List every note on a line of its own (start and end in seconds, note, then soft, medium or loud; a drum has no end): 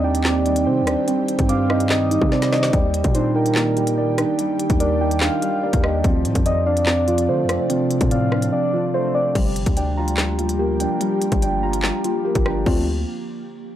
0.00 0.68 D#2 loud
0.00 6.00 D#3 medium
0.00 0.44 G3 medium
0.00 0.24 C4 loud
0.00 2.70 C4 medium
0.00 0.86 D4 medium
0.00 1.07 D#4 medium
0.00 2.70 G4 medium
0.00 0.86 D5 loud
0.04 1.04 D5 medium
0.04 1.28 G5 medium
0.15 closed hi-hat medium
0.24 1.07 C4 medium
0.24 snare loud
0.24 clap loud
0.45 1.06 G3 medium
0.45 1.70 D#4 medium
0.45 closed hi-hat medium
0.56 closed hi-hat medium
0.66 0.83 C3 loud
0.66 1.47 C4 medium
0.66 1.91 C5 medium
0.82 0.97 D#2 loud
0.87 1.91 D4 medium
0.87 2.11 D5 medium
0.87 cross-stick loud
0.87 closed hi-hat medium
1.08 2.10 G3 medium
1.08 1.89 C4 loud
1.08 closed hi-hat medium
1.28 closed hi-hat medium
1.39 2.18 G2 loud
1.39 kick loud
1.39 closed hi-hat medium
1.49 2.30 C4 medium
1.49 1.88 F5 medium
1.49 2.73 D6 loud
1.49 closed hi-hat medium
1.70 2.73 D#4 medium
1.70 2.73 D#5 medium
1.70 cross-stick loud
1.80 closed hi-hat medium
1.90 2.73 C4 medium
1.90 2.29 D#5 loud
1.90 snare loud
1.90 clap loud
2.11 2.72 G3 medium
2.11 2.73 D#4 medium
2.11 closed hi-hat medium
2.22 2.71 C3 loud
2.22 kick medium
2.32 2.73 C4 medium
2.32 2.73 C5 medium
2.32 2.51 D5 medium
2.32 snare medium
2.42 snare medium
2.42 closed hi-hat medium
2.52 2.73 D4 medium
2.52 2.72 D5 medium
2.52 2.72 D#5 medium
2.52 snare loud
2.63 snare loud
2.73 3.03 D#2 loud
2.73 6.01 G3 medium
2.73 3.76 G3 loud
2.73 6.01 G4 medium
2.73 3.96 D5 medium
2.73 kick loud
2.73 closed hi-hat medium
2.94 closed hi-hat medium
3.04 4.24 A#2 loud
3.04 kick loud
3.04 closed hi-hat medium
3.15 4.16 D4 loud
3.15 4.17 D#4 loud
3.15 3.34 C5 medium
3.15 closed hi-hat loud
3.34 4.38 D#4 medium
3.34 4.35 A#4 medium
3.34 4.60 G5 medium
3.46 closed hi-hat medium
3.55 4.80 A#3 loud
3.55 snare loud
3.55 clap loud
3.77 4.38 G3 medium
3.77 5.01 G4 medium
3.77 closed hi-hat medium
3.87 closed hi-hat medium
3.98 5.01 A#3 medium
3.98 5.22 D5 medium
4.18 4.78 D4 medium
4.18 5.42 D#4 medium
4.18 cross-stick loud
4.18 closed hi-hat medium
4.39 5.41 G3 loud
4.39 closed hi-hat medium
4.60 closed hi-hat medium
4.70 5.29 D#2 loud
4.70 kick loud
4.70 closed hi-hat medium
4.80 5.82 D4 medium
4.80 6.04 A#4 loud
4.80 5.19 D5 medium
4.80 closed hi-hat medium
5.01 6.04 D#4 medium
5.01 6.04 G5 loud
5.11 closed hi-hat medium
5.21 6.04 D4 medium
5.21 6.00 F5 loud
5.21 snare loud
5.21 clap loud
5.42 6.05 G3 medium
5.42 6.04 G4 medium
5.42 closed hi-hat medium
5.63 6.04 A#3 medium
5.63 6.04 D5 medium
5.73 6.03 D#2 loud
5.73 kick loud
5.73 closed hi-hat medium
5.83 6.04 D4 medium
5.83 6.04 D#5 medium
5.83 cross-stick loud
6.04 6.26 D2 loud
6.04 9.32 C3 medium
6.04 7.06 F3 medium
6.04 9.32 F3 medium
6.04 6.86 C4 loud
6.04 9.32 D4 medium
6.04 kick loud
6.04 closed hi-hat medium
6.25 6.35 A2 loud
6.25 closed hi-hat medium
6.35 7.30 F2 loud
6.35 kick loud
6.35 closed hi-hat medium
6.46 7.48 C4 medium
6.46 7.48 D5 medium
6.46 6.65 D#5 medium
6.46 closed hi-hat medium
6.66 7.70 D4 medium
6.66 7.66 D5 medium
6.66 7.91 F5 loud
6.77 closed hi-hat medium
6.86 7.68 C4 medium
6.86 snare loud
6.86 clap loud
7.07 7.68 F3 medium
7.07 8.32 F4 medium
7.07 closed hi-hat medium
7.18 closed hi-hat medium
7.28 7.46 D3 loud
7.28 8.32 A3 medium
7.28 8.53 C5 medium
7.44 7.59 F2 loud
7.49 8.10 C4 medium
7.49 8.10 D5 medium
7.49 cross-stick loud
7.49 closed hi-hat medium
7.70 8.72 F3 medium
7.70 8.52 C4 medium
7.70 closed hi-hat medium
7.91 closed hi-hat medium
8.01 8.51 A2 loud
8.01 kick loud
8.01 closed hi-hat medium
8.11 9.13 C4 medium
8.11 9.14 D5 medium
8.11 8.50 F5 medium
8.11 closed hi-hat medium
8.32 9.35 D4 medium
8.32 9.35 F5 medium
8.32 cross-stick medium
8.42 closed hi-hat medium
8.52 9.35 C4 medium
8.52 8.91 D5 medium
8.73 9.35 F3 medium
8.73 9.35 F4 medium
8.94 9.35 A3 medium
8.94 9.35 C5 medium
8.94 9.14 C5 medium
9.14 9.35 C4 medium
9.14 9.34 D5 medium
9.14 9.35 D5 medium
9.35 9.65 G1 loud
9.35 12.63 F3 medium
9.35 10.38 G3 medium
9.35 10.17 G3 loud
9.35 12.63 A#3 medium
9.35 12.63 G4 medium
9.35 kick loud
9.35 closed hi-hat medium
9.35 crash loud
9.56 closed hi-hat medium
9.66 10.87 D2 loud
9.66 kick medium
9.66 closed hi-hat medium
9.77 10.79 D4 medium
9.77 10.79 G5 medium
9.77 closed hi-hat medium
9.97 11.01 F4 medium
9.97 11.21 A#5 medium
10.08 closed hi-hat medium
10.17 11.00 G3 medium
10.17 snare loud
10.17 clap loud
10.39 10.99 G3 medium
10.39 11.63 F4 medium
10.39 closed hi-hat medium
10.49 closed hi-hat medium
10.59 11.63 A#3 medium
10.59 11.83 G4 loud
10.80 11.41 D4 medium
10.80 11.41 G5 medium
10.80 closed hi-hat medium
11.00 12.03 G3 medium
11.00 11.82 G3 medium
11.00 closed hi-hat medium
11.22 closed hi-hat medium
11.32 11.92 G1 loud
11.32 kick medium
11.32 closed hi-hat medium
11.42 12.44 D4 medium
11.42 12.44 G5 loud
11.42 closed hi-hat loud
11.63 12.66 F4 medium
11.63 12.66 A#5 loud
11.73 closed hi-hat medium
11.83 12.66 G3 medium
11.83 snare loud
11.83 clap loud
12.04 12.67 G3 medium
12.04 12.65 F4 medium
12.04 closed hi-hat medium
12.25 12.66 A#3 medium
12.25 12.66 G4 medium
12.35 12.65 G1 loud
12.35 kick loud
12.35 closed hi-hat medium
12.46 12.65 D4 medium
12.46 12.66 G5 medium
12.46 cross-stick loud
12.66 13.05 D2 loud
12.66 12.86 F3 medium
12.66 12.86 A3 medium
12.66 12.86 C4 medium
12.66 12.86 D4 medium
12.66 12.86 F4 loud
12.66 kick loud
12.66 crash medium